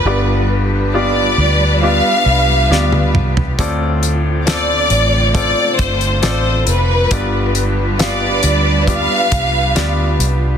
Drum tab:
HH |----------------|x-x-x-x-x-xxx-x-|x-x-x-x-x-x-x-x-|
SD |------------o---|----o-------o---|----o-------o---|
T1 |-------------o--|----------------|----------------|
T2 |--------------o-|----------------|----------------|
FT |---------------o|----------------|----------------|
BD |----------------|o-------o-o-----|o-------o-o-----|